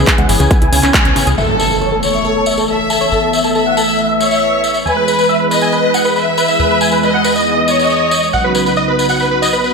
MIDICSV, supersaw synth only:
0, 0, Header, 1, 2, 480
1, 0, Start_track
1, 0, Tempo, 434783
1, 1520, Time_signature, 4, 2, 24, 8
1, 10747, End_track
2, 0, Start_track
2, 0, Title_t, "Supersaw synth"
2, 0, Program_c, 0, 81
2, 80, Note_on_c, 0, 68, 62
2, 164, Note_off_c, 0, 68, 0
2, 200, Note_on_c, 0, 78, 89
2, 284, Note_off_c, 0, 78, 0
2, 320, Note_on_c, 0, 68, 62
2, 403, Note_off_c, 0, 68, 0
2, 440, Note_on_c, 0, 80, 110
2, 1424, Note_off_c, 0, 80, 0
2, 1521, Note_on_c, 0, 76, 94
2, 1604, Note_off_c, 0, 76, 0
2, 1641, Note_on_c, 0, 69, 62
2, 1724, Note_off_c, 0, 69, 0
2, 1760, Note_on_c, 0, 69, 64
2, 1843, Note_off_c, 0, 69, 0
2, 1880, Note_on_c, 0, 69, 60
2, 1963, Note_off_c, 0, 69, 0
2, 1999, Note_on_c, 0, 73, 86
2, 2083, Note_off_c, 0, 73, 0
2, 2119, Note_on_c, 0, 69, 59
2, 2203, Note_off_c, 0, 69, 0
2, 2241, Note_on_c, 0, 69, 59
2, 2324, Note_off_c, 0, 69, 0
2, 2360, Note_on_c, 0, 76, 91
2, 2443, Note_off_c, 0, 76, 0
2, 2481, Note_on_c, 0, 69, 62
2, 2564, Note_off_c, 0, 69, 0
2, 2601, Note_on_c, 0, 69, 59
2, 2684, Note_off_c, 0, 69, 0
2, 2722, Note_on_c, 0, 76, 87
2, 2805, Note_off_c, 0, 76, 0
2, 2842, Note_on_c, 0, 69, 59
2, 2924, Note_off_c, 0, 69, 0
2, 2961, Note_on_c, 0, 69, 58
2, 3044, Note_off_c, 0, 69, 0
2, 3202, Note_on_c, 0, 69, 61
2, 3284, Note_off_c, 0, 69, 0
2, 3320, Note_on_c, 0, 73, 94
2, 3404, Note_off_c, 0, 73, 0
2, 3440, Note_on_c, 0, 69, 60
2, 3523, Note_off_c, 0, 69, 0
2, 3561, Note_on_c, 0, 69, 62
2, 3644, Note_off_c, 0, 69, 0
2, 3681, Note_on_c, 0, 76, 90
2, 3764, Note_off_c, 0, 76, 0
2, 3801, Note_on_c, 0, 69, 61
2, 3884, Note_off_c, 0, 69, 0
2, 3921, Note_on_c, 0, 69, 57
2, 4004, Note_off_c, 0, 69, 0
2, 4041, Note_on_c, 0, 78, 83
2, 4124, Note_off_c, 0, 78, 0
2, 4160, Note_on_c, 0, 69, 59
2, 4244, Note_off_c, 0, 69, 0
2, 4282, Note_on_c, 0, 76, 98
2, 5265, Note_off_c, 0, 76, 0
2, 5362, Note_on_c, 0, 80, 95
2, 5444, Note_off_c, 0, 80, 0
2, 5481, Note_on_c, 0, 71, 63
2, 5564, Note_off_c, 0, 71, 0
2, 5601, Note_on_c, 0, 71, 62
2, 5684, Note_off_c, 0, 71, 0
2, 5721, Note_on_c, 0, 71, 60
2, 5804, Note_off_c, 0, 71, 0
2, 5842, Note_on_c, 0, 76, 85
2, 5924, Note_off_c, 0, 76, 0
2, 5961, Note_on_c, 0, 71, 59
2, 6044, Note_off_c, 0, 71, 0
2, 6082, Note_on_c, 0, 71, 59
2, 6164, Note_off_c, 0, 71, 0
2, 6202, Note_on_c, 0, 80, 93
2, 6284, Note_off_c, 0, 80, 0
2, 6321, Note_on_c, 0, 71, 62
2, 6404, Note_off_c, 0, 71, 0
2, 6441, Note_on_c, 0, 71, 59
2, 6524, Note_off_c, 0, 71, 0
2, 6561, Note_on_c, 0, 78, 86
2, 6644, Note_off_c, 0, 78, 0
2, 6680, Note_on_c, 0, 71, 61
2, 6763, Note_off_c, 0, 71, 0
2, 6800, Note_on_c, 0, 71, 60
2, 6883, Note_off_c, 0, 71, 0
2, 7040, Note_on_c, 0, 71, 63
2, 7123, Note_off_c, 0, 71, 0
2, 7161, Note_on_c, 0, 76, 93
2, 7244, Note_off_c, 0, 76, 0
2, 7281, Note_on_c, 0, 71, 62
2, 7364, Note_off_c, 0, 71, 0
2, 7401, Note_on_c, 0, 71, 62
2, 7484, Note_off_c, 0, 71, 0
2, 7520, Note_on_c, 0, 80, 90
2, 7604, Note_off_c, 0, 80, 0
2, 7641, Note_on_c, 0, 71, 60
2, 7724, Note_off_c, 0, 71, 0
2, 7761, Note_on_c, 0, 71, 59
2, 7844, Note_off_c, 0, 71, 0
2, 7881, Note_on_c, 0, 78, 85
2, 7964, Note_off_c, 0, 78, 0
2, 8001, Note_on_c, 0, 71, 61
2, 8084, Note_off_c, 0, 71, 0
2, 8121, Note_on_c, 0, 75, 99
2, 9105, Note_off_c, 0, 75, 0
2, 9200, Note_on_c, 0, 78, 92
2, 9283, Note_off_c, 0, 78, 0
2, 9319, Note_on_c, 0, 71, 62
2, 9403, Note_off_c, 0, 71, 0
2, 9441, Note_on_c, 0, 71, 61
2, 9524, Note_off_c, 0, 71, 0
2, 9561, Note_on_c, 0, 71, 60
2, 9644, Note_off_c, 0, 71, 0
2, 9681, Note_on_c, 0, 75, 88
2, 9764, Note_off_c, 0, 75, 0
2, 9801, Note_on_c, 0, 71, 60
2, 9884, Note_off_c, 0, 71, 0
2, 9920, Note_on_c, 0, 71, 59
2, 10003, Note_off_c, 0, 71, 0
2, 10040, Note_on_c, 0, 78, 93
2, 10123, Note_off_c, 0, 78, 0
2, 10161, Note_on_c, 0, 71, 61
2, 10244, Note_off_c, 0, 71, 0
2, 10280, Note_on_c, 0, 71, 61
2, 10363, Note_off_c, 0, 71, 0
2, 10400, Note_on_c, 0, 75, 90
2, 10483, Note_off_c, 0, 75, 0
2, 10520, Note_on_c, 0, 71, 61
2, 10604, Note_off_c, 0, 71, 0
2, 10640, Note_on_c, 0, 71, 61
2, 10723, Note_off_c, 0, 71, 0
2, 10747, End_track
0, 0, End_of_file